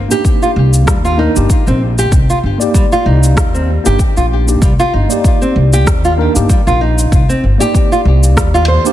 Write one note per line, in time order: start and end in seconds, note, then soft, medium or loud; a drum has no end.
0.08 1.14 A#3 medium
0.08 1.15 D4 medium
0.08 1.15 D#4 medium
0.08 0.24 G4 medium
0.08 shaker medium
0.13 1.16 G4 medium
0.25 kick medium
0.25 shaker medium
0.42 0.50 F4 medium
0.42 shaker soft
0.56 0.87 C2 medium
0.74 shaker medium
0.87 1.26 D#2 medium
0.87 0.97 G3 medium
0.87 kick medium
0.87 cross-stick medium
0.87 shaker medium
1.05 1.17 F4 medium
1.05 shaker soft
1.17 1.31 A#3 medium
1.17 1.31 D4 medium
1.17 1.32 D#4 medium
1.17 1.66 D#4 medium
1.17 1.32 A#4 medium
1.35 1.45 G1 medium
1.35 1.47 A#3 medium
1.35 1.47 D4 medium
1.35 1.48 D#4 medium
1.35 1.48 G4 medium
1.35 shaker medium
1.50 kick loud
1.50 shaker medium
1.67 2.05 A#1 medium
1.67 1.80 C4 medium
1.67 shaker soft
1.99 2.12 G4 medium
1.99 shaker medium
2.12 2.24 C2 medium
2.12 kick loud
2.12 shaker medium
2.30 2.38 F4 medium
2.30 shaker soft
2.43 2.55 G1 medium
2.58 3.80 A#3 medium
2.58 3.82 D#4 medium
2.58 3.81 D5 medium
2.58 shaker medium
2.62 3.82 G4 medium
2.74 2.85 G3 medium
2.74 kick medium
2.74 shaker medium
2.92 3.05 F4 medium
2.92 shaker soft
3.06 3.37 C2 medium
3.06 3.53 D#4 medium
3.24 shaker medium
3.37 3.76 D#2 medium
3.37 kick loud
3.37 cross-stick medium
3.37 shaker medium
3.54 3.68 C4 medium
3.54 shaker soft
3.84 3.95 G1 medium
3.84 3.97 A#3 medium
3.84 3.97 D4 medium
3.84 3.97 D#4 medium
3.84 3.99 G4 loud
3.84 3.98 G4 loud
3.84 shaker medium
3.99 kick medium
3.99 shaker medium
4.17 4.55 A#1 medium
4.17 4.25 F4 medium
4.17 shaker soft
4.47 4.59 A#3 medium
4.47 4.60 D4 medium
4.47 4.60 D#4 medium
4.47 4.60 G4 medium
4.47 shaker medium
4.62 4.74 C2 medium
4.62 4.72 G3 medium
4.62 kick loud
4.62 shaker medium
4.80 4.92 F4 loud
4.80 shaker soft
4.94 5.05 G1 medium
4.94 5.40 D#4 medium
5.08 6.14 A#3 medium
5.08 6.15 D#4 medium
5.08 6.16 G4 medium
5.08 6.15 D5 medium
5.08 shaker medium
5.24 kick medium
5.24 shaker medium
5.42 5.55 C4 medium
5.42 shaker soft
5.56 5.87 C2 medium
5.73 5.86 G4 loud
5.73 shaker medium
5.87 6.26 D#2 medium
5.87 kick loud
5.87 cross-stick medium
5.87 shaker medium
6.05 6.12 F4 medium
6.05 shaker soft
6.17 6.31 A#3 medium
6.17 6.31 D4 medium
6.17 6.32 D#4 medium
6.17 6.32 A#4 loud
6.34 6.45 G1 medium
6.34 6.47 A#3 medium
6.34 6.47 D4 medium
6.34 6.47 D#4 medium
6.34 6.48 G4 loud
6.34 shaker medium
6.50 6.60 G3 medium
6.50 kick loud
6.50 shaker medium
6.67 7.05 A#1 medium
6.67 6.79 F4 medium
6.67 shaker soft
6.81 7.28 D#4 medium
6.99 shaker medium
7.12 7.24 C2 medium
7.12 kick loud
7.12 shaker soft
7.29 7.43 C4 medium
7.29 shaker soft
7.44 7.55 G1 medium
7.58 8.80 A#3 medium
7.58 8.82 D#4 medium
7.58 7.74 G4 medium
7.58 8.81 D5 medium
7.58 shaker medium
7.62 8.82 G4 medium
7.75 kick medium
7.75 shaker medium
7.92 8.00 F4 medium
7.92 shaker soft
8.05 8.37 C2 medium
8.23 shaker medium
8.37 8.76 D#2 medium
8.37 8.47 G3 medium
8.37 kick loud
8.37 cross-stick medium
8.37 shaker medium
8.54 8.67 F4 medium
8.54 shaker soft
8.68 8.85 C5 medium
8.84 8.93 A#3 medium
8.84 8.93 D4 medium
8.84 8.93 D#4 medium
8.84 8.93 G4 loud
8.84 shaker medium